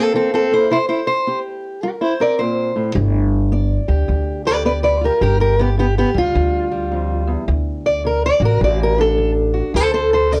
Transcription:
0.00 0.50 A#3 soft
0.00 0.14 C4 medium
0.00 0.14 A4 medium
0.14 0.66 E3 medium
0.14 0.33 C4 medium
0.14 0.34 A4 medium
0.34 0.52 C4 medium
0.34 0.52 A4 medium
0.51 0.68 A#3 soft
0.51 0.70 E4 medium
0.51 0.71 C5 medium
0.70 1.23 C3 medium
0.70 0.76 E4 medium
0.70 0.87 C5 loud
0.88 1.00 E4 medium
0.88 1.06 C5 medium
1.07 1.38 C5 loud
1.27 1.79 C4 medium
1.27 1.83 G4 medium
1.83 2.36 G3 medium
1.83 1.89 G4 medium
1.83 2.02 A#4 loud
2.01 2.12 E4 medium
2.01 2.21 C5 medium
2.20 2.94 C4 soft
2.20 2.40 A#4 medium
2.20 2.38 D5 medium
2.39 2.75 A#2 medium
2.39 2.75 C5 medium
2.76 2.95 A2 medium
2.95 3.77 G1 loud
2.95 3.48 G3 medium
3.52 4.05 B3 medium
3.52 4.47 D5 soft
3.88 4.07 D2 medium
3.88 4.44 G4 soft
4.08 4.61 D2 medium
4.08 5.08 D2 medium
4.46 5.03 G4 soft
4.46 4.55 B4 medium
4.46 4.65 D5 medium
4.65 5.18 B3 medium
4.65 4.72 B4 medium
4.65 4.83 D5 loud
4.83 4.95 B4 medium
4.83 5.03 D5 loud
5.01 5.20 F4 soft
5.01 5.12 G4 medium
5.05 5.22 A#4 medium
5.21 6.03 G1 medium
5.21 5.74 G2 medium
5.21 5.39 G4 medium
5.21 5.40 A#4 loud
5.40 5.59 G4 medium
5.40 5.60 A#4 medium
5.59 5.68 B3 medium
5.59 5.78 G4 medium
5.78 6.30 D3 medium
5.78 5.85 B3 medium
5.78 5.97 G4 medium
5.98 6.09 B3 medium
5.98 6.17 G4 medium
6.14 6.33 D2 medium
6.14 6.70 G3 soft
6.14 7.30 F4 loud
6.35 7.35 D2 medium
6.35 6.87 D3 medium
6.72 7.49 G3 soft
6.92 7.27 F2 medium
7.27 7.48 E2 medium
7.48 8.29 D2 medium
7.48 8.00 D2 medium
7.86 8.05 D5 medium
8.05 8.57 D3 medium
8.05 8.24 A#4 medium
8.26 8.43 D5 loud
8.40 8.58 A1 medium
8.40 8.99 F#4 medium
8.45 8.62 A#4 loud
8.61 9.60 A1 medium
8.61 9.13 A2 medium
8.61 8.81 D5 loud
8.83 9.00 A#4 medium
8.98 9.79 D4 soft
8.98 9.30 A4 loud
9.17 9.70 D3 medium
9.54 9.72 F#4 soft
9.74 10.40 D2 medium
9.74 10.27 D2 medium
9.74 9.93 A4 loud
9.74 9.93 C5 loud
9.94 10.12 A4 medium
9.94 10.12 C5 medium
10.13 10.31 A4 medium
10.13 10.32 C5 medium
10.31 10.40 D3 medium
10.31 10.37 A#4 medium
10.31 10.40 D5 medium

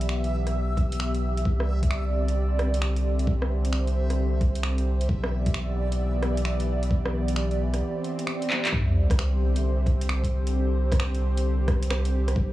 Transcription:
0.00 1.44 B1 medium
0.00 1.42 E3 medium
0.00 1.42 B3 medium
0.00 5.05 G4 medium
0.00 1.44 E5 medium
0.00 8.74 E5 medium
0.00 closed hi-hat medium
0.09 finger snap loud
0.24 closed hi-hat soft
0.47 cross-stick soft
0.47 closed hi-hat medium
0.77 kick loud
0.77 closed hi-hat soft
0.92 closed hi-hat medium
1.00 finger snap loud
1.15 closed hi-hat soft
1.37 closed hi-hat soft
1.45 5.07 C2 medium
1.45 5.06 D3 medium
1.45 5.05 C4 medium
1.45 3.26 D5 medium
1.45 kick loud
1.60 cross-stick medium
1.83 kick loud
1.83 closed hi-hat medium
1.91 finger snap medium
2.28 closed hi-hat medium
2.59 cross-stick medium
2.59 closed hi-hat soft
2.74 closed hi-hat soft
2.82 finger snap loud
2.96 closed hi-hat soft
3.19 closed hi-hat soft
3.27 5.07 C5 medium
3.27 kick loud
3.42 cross-stick medium
3.65 closed hi-hat soft
3.73 finger snap loud
3.87 closed hi-hat soft
4.10 cross-stick soft
4.10 closed hi-hat medium
4.41 kick loud
4.41 closed hi-hat soft
4.55 closed hi-hat medium
4.63 finger snap loud
4.78 closed hi-hat soft
5.01 closed hi-hat soft
5.09 7.82 B1 medium
5.09 8.70 E3 medium
5.09 8.70 B3 medium
5.09 8.70 G4 medium
5.09 8.70 D5 medium
5.09 kick loud
5.24 cross-stick medium
5.46 kick loud
5.46 closed hi-hat medium
5.54 finger snap loud
5.92 closed hi-hat medium
6.23 cross-stick medium
6.23 closed hi-hat soft
6.37 closed hi-hat medium
6.45 finger snap medium
6.60 closed hi-hat soft
6.83 closed hi-hat soft
6.91 kick loud
7.05 cross-stick medium
7.28 closed hi-hat medium
7.36 finger snap loud
7.51 closed hi-hat soft
7.74 cross-stick soft
7.74 closed hi-hat medium
7.82 swell medium
8.04 closed hi-hat soft
8.19 closed hi-hat medium
8.27 finger snap loud
8.42 closed hi-hat soft
8.50 clap medium
8.65 clap medium
8.65 closed hi-hat medium
8.72 12.35 C2 medium
8.72 12.33 D3 medium
8.72 12.33 C4 medium
8.72 12.53 G4 medium
8.72 12.33 C5 medium
8.72 kick loud
8.72 sub drop medium
9.10 kick loud
9.10 cross-stick medium
9.10 closed hi-hat medium
9.19 finger snap loud
9.56 closed hi-hat medium
9.86 kick loud
9.86 closed hi-hat soft
10.01 closed hi-hat medium
10.09 finger snap loud
10.24 kick medium
10.24 closed hi-hat soft
10.47 closed hi-hat medium
10.92 kick loud
10.92 cross-stick medium
10.92 closed hi-hat medium
11.00 finger snap loud
11.15 closed hi-hat soft
11.37 closed hi-hat medium
11.68 kick loud
11.68 cross-stick medium
11.68 closed hi-hat soft
11.83 closed hi-hat medium
11.91 finger snap loud
11.91 cross-stick medium
12.05 closed hi-hat soft
12.28 cross-stick medium
12.28 closed hi-hat medium
12.35 12.53 B1 medium
12.35 12.53 E3 medium
12.35 12.53 D4 medium
12.35 12.53 B4 medium
12.35 kick loud

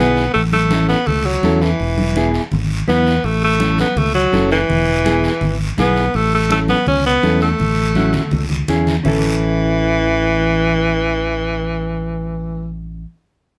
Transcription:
0.00 0.27 B1 medium
0.00 0.24 B3 medium
0.00 0.32 B3 loud
0.00 0.24 E4 medium
0.00 0.24 G#4 medium
0.16 short guiro medium
0.34 0.93 A1 loud
0.34 0.42 A3 medium
0.34 high conga soft
0.34 long guiro medium
0.52 0.87 A3 loud
0.52 high conga medium
0.70 0.97 C#4 medium
0.70 0.97 E4 medium
0.70 0.97 A4 medium
0.70 high conga medium
0.70 short guiro medium
0.89 1.08 B3 medium
0.89 short guiro medium
1.06 1.37 C#2 medium
1.06 1.27 A3 loud
1.06 low conga medium
1.06 long guiro medium
1.25 1.63 F#3 medium
1.25 high conga soft
1.43 1.72 E2 medium
1.43 1.69 C#4 medium
1.43 1.69 E4 medium
1.43 1.69 A4 medium
1.43 high conga medium
1.43 short guiro medium
1.61 2.43 E3 medium
1.61 short guiro medium
1.80 2.38 E1 medium
1.80 high conga soft
1.80 long guiro medium
1.98 high conga medium
2.16 2.41 B3 medium
2.16 2.41 E4 medium
2.16 2.42 G#4 medium
2.16 high conga medium
2.16 short guiro medium
2.34 short guiro medium
2.52 2.82 G#1 medium
2.52 low conga medium
2.52 long guiro medium
2.71 high conga soft
2.88 3.18 E2 medium
2.88 3.13 B3 medium
2.88 3.26 B3 medium
2.88 3.13 E4 medium
2.88 3.13 B4 medium
2.88 high conga medium
2.88 short guiro medium
3.07 short guiro medium
3.24 3.82 A1 loud
3.24 3.43 A3 medium
3.24 high conga soft
3.24 long guiro medium
3.44 3.77 A3 medium
3.60 3.86 C#4 medium
3.60 3.86 E4 soft
3.60 3.86 A4 medium
3.60 high conga loud
3.60 short guiro medium
3.78 3.99 B3 medium
3.78 high conga medium
3.78 short guiro medium
3.96 4.26 C#2 medium
3.96 4.14 A3 medium
3.96 low conga medium
3.96 long guiro medium
4.14 4.48 F#3 loud
4.14 high conga soft
4.33 4.62 F#1 medium
4.33 4.58 C#4 medium
4.33 4.59 E4 medium
4.33 4.59 A4 medium
4.33 high conga medium
4.33 short guiro medium
4.51 5.56 E3 loud
4.51 short guiro medium
4.69 5.28 E1 loud
4.69 high conga soft
4.69 low conga medium
4.69 long guiro medium
5.04 5.31 B3 medium
5.04 5.31 E4 medium
5.04 5.31 G#4 medium
5.04 high conga medium
5.04 short guiro medium
5.24 short guiro medium
5.41 5.71 G#1 medium
5.41 low conga medium
5.41 long guiro medium
5.60 high conga soft
5.78 6.08 B1 medium
5.78 6.04 B3 medium
5.78 6.17 B3 medium
5.78 6.04 E4 medium
5.78 6.04 G#4 medium
5.78 high conga medium
5.78 low conga medium
5.78 short guiro medium
5.96 short guiro medium
6.14 6.73 A1 loud
6.14 6.33 A3 medium
6.14 high conga soft
6.14 long guiro medium
6.34 6.51 A3 loud
6.50 6.60 A3 loud
6.50 6.76 C#4 medium
6.50 6.76 E4 medium
6.50 6.76 A4 medium
6.50 high conga medium
6.50 short guiro medium
6.68 6.86 B3 loud
6.68 high conga medium
6.68 short guiro medium
6.86 7.16 C#2 medium
6.86 7.04 C#4 loud
6.86 low conga medium
6.86 long guiro medium
7.04 7.40 B3 loud
7.04 high conga soft
7.22 7.53 E2 medium
7.22 7.49 C#4 medium
7.22 7.49 E4 medium
7.22 7.49 A4 medium
7.22 high conga medium
7.22 short guiro medium
7.41 8.47 A3 medium
7.41 short guiro medium
7.59 8.18 A1 medium
7.59 high conga soft
7.59 low conga medium
7.59 long guiro medium
7.95 8.21 C#4 medium
7.95 8.21 E4 medium
7.95 8.22 F#4 medium
7.95 high conga medium
7.95 short guiro medium
8.13 low conga loud
8.13 short guiro medium
8.31 8.62 C#2 medium
8.31 low conga medium
8.31 long guiro medium
8.49 low conga medium
8.68 8.98 E2 medium
8.68 8.94 C#4 medium
8.68 8.94 E4 medium
8.68 8.94 G#4 loud
8.68 low conga medium
8.68 short guiro medium
8.87 low conga medium
8.87 short guiro medium
9.03 13.04 A1 medium
9.03 12.71 E3 loud
9.03 13.02 C#4 medium
9.03 13.05 E4 medium
9.03 low conga loud
9.03 long guiro loud
9.08 13.07 A4 loud

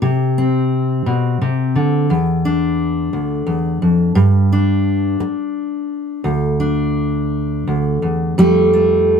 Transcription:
0.00 1.06 C3 medium
0.00 1.44 G4 medium
0.38 2.06 C4 soft
1.06 1.41 B2 medium
1.41 1.76 C3 medium
1.76 2.10 D3 medium
2.10 3.13 E2 medium
2.45 4.52 D4 soft
3.13 3.46 D2 medium
3.47 3.82 E2 medium
3.82 4.15 F2 medium
4.15 5.19 G2 medium
4.52 6.21 D4 medium
5.20 muted steel-string acoustic guitar stroke medium
6.24 7.66 D2 medium
6.60 8.35 D4 soft
7.67 8.02 D2 medium
8.02 8.37 E2 soft
8.38 9.20 F2 medium
8.38 9.20 G3 medium
8.38 8.72 A3 medium
8.38 9.20 G4 medium
8.73 9.20 A3 soft

